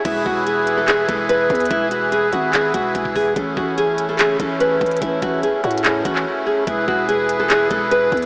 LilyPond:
<<
  \new Staff \with { instrumentName = "Nylon-string guitar" } { \time 4/4 \key e \major \tempo 4 = 145 e'8 fis'8 gis'8. a'16 gis'8 a'8 b'4 | e'8 fis'8 gis'8 fis'8 gis'8 fis'4 gis'8 | a'8 fis'8 gis'8. a'16 gis'8 a'8 b'4 | e'8 fis'8 gis'8 fis'8 gis'8 fis'4 gis'8 |
e'8 fis'8 gis'8. a'16 gis'8 a'8 b'4 | }
  \new Staff \with { instrumentName = "Accordion" } { \time 4/4 \key e \major <e e' gis' b'>1~ | <e e' gis' b'>1 | <a cis'>1~ | <a cis'>1 |
<e gis' b'>1 | }
  \new Staff \with { instrumentName = "808-style bass" } { \clef bass \time 4/4 \key e \major e,,8 e,,2 e,,4 e,8 | e,,4. gis,,4 e,,8 e,,4 | a,,8 a,,2 a,,4 a,,8 | a,,8 a,,8 r8 a,4 a,,8 r4 |
e,,8 e,,2 e,,4 e,8 | }
  \new DrumStaff \with { instrumentName = "Drums" } \drummode { \time 4/4 <cymc hh bd>8 bd8 hh8 hh8 <hc hh>8 <hh bd>8 hh8 <hh bd>32 hh32 hh32 hh32 | <hh bd>8 hh8 hh8 hh8 <hc hh>8 <hh bd>8 <hh bd>16 bd16 <hho bd>8 | <hh bd>8 bd8 hh8 hh8 <hc hh>8 <hh bd>8 hh8 <hh bd>32 hh32 hh32 hh32 | <hh bd>8 <hh bd>8 \tuplet 3/2 { hh16 r16 r16 hh16 hh16 hh16 } <hc hh>8 <hh bd>16 hc16 r4 |
<hh bd>8 bd8 hh8 hh8 <hc hh>8 <hh bd>8 hh8 <hh bd>32 hh32 hh16 | }
>>